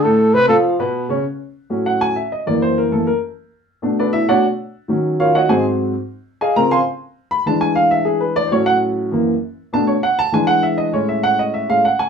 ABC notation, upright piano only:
X:1
M:4/4
L:1/8
Q:1/4=198
K:A
V:1 name="Upright piano"
[A,,A,A]2 [=C,=C=c] [=F,=F=f]2 [B,,B,B]2 [^C,^C^c] | z4 f g e ^d | d =c ^A =A ^A z3 | z2 [DABd] [Ee] [Fcdf] z3 |
z2 [^E^Ac^e] [Fc^df] [G^Bdg] z3 | z2 [G^d^eg] [_B_b] [^Beg^b] z3 | b a g =f e G B d | [=c^c] f z6 |
a c f a g f e ^d | c e f ^d e =f ^f g |]
V:2 name="Upright piano" clef=bass
z8 | z3 [A,,F,C]3 z2 | [F,,E,^A,]3 [F,,E,A,] z4 | z [B,,A,D]3 [B,,A,D] z3 |
[^D,F,C]4 [G,,F,^B,]3 z | z3 [C,^E,^B,] z4 | z [E,G,D]6- [E,G,D] | [A,,F,C]4 [F,,E,^A,] z3 |
[B,,A,D] z3 [E,G,D]4 | [A,,G,C]4- [A,,G,C] [A,,G,C] z2 |]